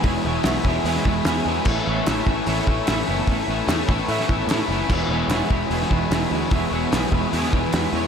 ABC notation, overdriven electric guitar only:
X:1
M:4/4
L:1/8
Q:1/4=148
K:A
V:1 name="Overdriven electric guitar" clef=bass
[E,,B,,E,G,B,E] [E,,B,,E,G,B,E] [E,,B,,E,G,B,E] [E,,B,,E,G,B,E] [E,,B,,E,G,B,E] [E,,B,,E,G,B,E] [E,,B,,E,G,B,E] [E,,B,,E,G,B,E] | [A,,E,A,CE] [A,,E,A,CE] [A,,E,A,CE] [A,,E,A,CE] [A,,E,A,CE] [A,,E,A,CE] [A,,E,A,CE] [A,,E,A,CE] | [A,,E,A,CE] [A,,E,A,CE] [A,,E,A,CE] [A,,E,A,CE] [A,,E,A,CE] [A,,E,A,CE] [A,,E,A,CE] [A,,E,A,CE] | [E,,B,,E,G,B,E] [E,,B,,E,G,B,E] [E,,B,,E,G,B,E] [E,,B,,E,G,B,E] [E,,B,,E,G,B,E] [E,,B,,E,G,B,E] [E,,B,,E,G,B,E] [E,,B,,E,G,B,E] |
[E,,B,,E,G,B,E] [E,,B,,E,G,B,E] [E,,B,,E,G,B,E] [E,,B,,E,G,B,E] [E,,B,,E,G,B,E] [E,,B,,E,G,B,E] [E,,B,,E,G,B,E] [E,,B,,E,G,B,E] |]